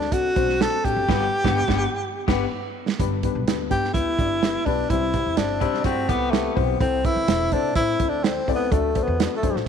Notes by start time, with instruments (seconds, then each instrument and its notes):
Already playing: upright bass D2, tenor saxophone D4
0.01 snare
0.12 upright bass C2, upright piano C4 D4 F#4 A4, tenor saxophone F#4, kick, closed hi-hat
0.36 upright bass B1, upright piano C4 D4 F#4 C5, kick, closed hi-hat
0.49 snare
0.60 upright piano C4 D4 F#4 A4, tenor saxophone A4, snare, closed hi-hat
0.85 upright bass A1, upright piano C4 D4 F#4 A4, tenor saxophone G4, kick, closed hi-hat
0.96 upright bass F#1
1.09 upright bass G1, upright piano G2 B3 D4 G4 B4, clean electric guitar B3 G4, kick, snare, crash
1.44 upright bass G1, upright piano B3 D4 G4 B4, clean electric guitar B3 G4, kick, snare
1.68 upright bass G1, clean electric guitar B3 G4, upright piano B3 D4 G4, kick, snare
2.28 upright bass G1, clean electric guitar B3 G4, upright piano B3 D4 G4 B4, kick, snare, crash
2.88 snare
2.99 upright bass G1, upright piano G2 B3 D4 G4 B4, kick, closed hi-hat
3.23 upright piano B3 D4 G4 B4, kick, closed hi-hat
3.35 upright bass B1
3.47 upright bass D2, upright piano B3 D4 G4 B4, snare, closed hi-hat
3.70 upright bass G2, upright piano B3 D4 G4 B4, tenor saxophone G4, kick, closed hi-hat
3.84 snare
3.93 upright bass D2, upright piano B3 D4 G4 B4, tenor saxophone E4, kick, closed hi-hat
4.19 upright bass G1, upright piano B3 D4 G4 D5, kick, closed hi-hat
4.42 upright piano B3 D4 G4 B4, snare, closed hi-hat
4.65 upright bass B1, upright piano B3 D4 G4 B4, tenor saxophone D4, kick, open hi-hat
4.90 upright bass C2, upright piano C3 C4 E4 G4 C5, tenor saxophone E4, kick, closed hi-hat
5.14 upright piano C4 E4 G4 C5, kick, closed hi-hat
5.26 upright bass E2
5.37 upright bass G1, upright piano C4 E4 G4 C5, tenor saxophone D4, snare, closed hi-hat
5.61 upright bass C3, clean electric guitar G3 E4, upright piano C4 E4 G4 C5, kick, closed hi-hat
5.74 snare
5.84 upright bass G2, clean electric guitar A3 F#4, upright piano C4 E4 G4 C5, tenor saxophone C4, kick, closed hi-hat
6.08 upright bass C2, tenor saxophone B3, clean electric guitar B3 G4, upright piano C4 E4 G4 A4, kick, closed hi-hat
6.31 tenor saxophone A3, upright piano C4 E4 G4 B4, snare, closed hi-hat
6.55 upright bass B1, upright piano C4 E4 G4 C5, kick, open hi-hat
6.80 upright bass C2, upright piano C3 C4 E4 A4 C5, tenor saxophone C4, kick, closed hi-hat
7.04 upright piano C4 E4 A4 B4, tenor saxophone E4, kick, closed hi-hat
7.16 upright bass E2
7.28 upright bass E1, upright piano C4 E4 A4 C5, snare, closed hi-hat
7.52 upright bass C3, upright piano C4 E4 A4 C5, tenor saxophone D4, kick, closed hi-hat
7.75 upright bass A2, upright piano C4 E4 A4 C5, tenor saxophone E4, kick, closed hi-hat
8.00 upright bass D2, upright piano C4 E4 A4 C5, kick, closed hi-hat
8.09 tenor saxophone D4
8.23 tenor saxophone C4, upright piano C4 E4 A4 D5, snare, closed hi-hat
8.48 upright bass C#2, upright piano C4 E4 A4 D5, kick, open hi-hat
8.55 tenor saxophone B3
8.71 upright bass D2, upright piano D3 D4 F#4 A4 D5, tenor saxophone A3, kick, closed hi-hat
8.95 upright piano D4 F#4 A4 C5, kick, closed hi-hat
9.03 tenor saxophone B3
9.07 upright bass E2
9.20 upright piano D4 F#4 A4 D5, snare, closed hi-hat
9.37 tenor saxophone A3
9.43 upright bass F#2, upright piano D4 F#4 A4 C5, kick, closed hi-hat
9.55 upright bass A2, snare